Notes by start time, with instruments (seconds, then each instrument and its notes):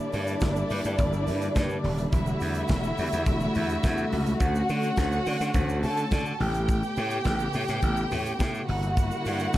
Already playing: string section D3 G3 A#3 E4, violin section D4 D5
0.13 slap bass G2, open hi-hat, shaker
0.27 closed hi-hat, shaker
0.41 slap bass G1, kick, snare, closed hi-hat, high conga, shaker
0.56 shaker
0.70 slap bass G2, open hi-hat, shaker
0.84 slap bass G2, closed hi-hat, shaker
0.98 slap bass G1, kick, closed hi-hat, muted conga, low conga, shaker
1.13 shaker
1.27 slap bass G2, open hi-hat, muted conga, shaker
1.42 closed hi-hat, shaker
1.55 slap bass G2, kick, snare, closed hi-hat, high conga, shaker
1.69 shaker
1.84 slap bass D#1, open hi-hat, high conga
1.98 closed hi-hat, shaker
2.12 slap bass E1, string section A3 F#4, violin section E4 E5, kick, closed hi-hat, muted conga, shaker
2.26 shaker
2.40 slap bass E2, open hi-hat, shaker
2.54 closed hi-hat, shaker
2.68 slap bass E1, kick, snare, closed hi-hat, high conga, shaker
2.83 shaker
2.98 slap bass E2, open hi-hat, shaker
3.12 slap bass E2, closed hi-hat, shaker
3.26 slap bass E1, kick, closed hi-hat, muted conga, shaker
3.40 shaker
3.55 slap bass E2, open hi-hat, low conga, shaker
3.69 closed hi-hat, shaker
3.83 slap bass E2, kick, snare, closed hi-hat, high conga, shaker
3.97 shaker
4.12 slap bass C#2, open hi-hat, high conga
4.26 closed hi-hat, high conga, shaker
4.40 slap bass D2, string section C#4, violin section F#4 F#5, kick, closed hi-hat, muted conga, shaker
4.55 shaker
4.69 slap bass D3, open hi-hat, shaker
4.83 closed hi-hat, shaker
4.97 slap bass D2, kick, snare, closed hi-hat, high conga, shaker
5.12 shaker
5.26 slap bass D3, open hi-hat, shaker
5.41 slap bass D3, snare, closed hi-hat, shaker
5.54 slap bass D2, kick, closed hi-hat, muted conga, low conga, shaker
5.69 shaker
5.83 slap bass D3, violin section A4 A5, open hi-hat, shaker
5.97 closed hi-hat, shaker
6.11 slap bass D3, kick, snare, closed hi-hat, high conga, shaker
6.25 shaker
6.40 slap bass A1, string section C#3 A3 B3 G4, violin section G4 G5, open hi-hat, high conga
6.54 closed hi-hat, shaker
6.68 kick, closed hi-hat, muted conga, shaker
6.83 shaker
6.96 slap bass A2, open hi-hat, shaker
7.10 closed hi-hat, shaker
7.24 slap bass A1, kick, snare, closed hi-hat, high conga, shaker
7.39 shaker
7.53 slap bass A2, open hi-hat, shaker
7.68 slap bass A2, snare, closed hi-hat, shaker
7.82 slap bass A1, kick, closed hi-hat, muted conga, shaker
7.96 shaker
8.11 slap bass A2, open hi-hat, muted conga, low conga, shaker
8.26 closed hi-hat, shaker
8.39 slap bass A2, kick, snare, closed hi-hat, high conga, shaker
8.54 shaker
8.68 slap bass G1, string section D3 G3 A#3 E4, violin section F#4 F#5, open hi-hat, high conga
8.83 closed hi-hat, shaker
8.97 kick, closed hi-hat, muted conga, shaker
9.11 shaker
9.25 slap bass G2, open hi-hat, shaker
9.39 closed hi-hat, shaker
9.53 slap bass G1, kick, snare, closed hi-hat, high conga, shaker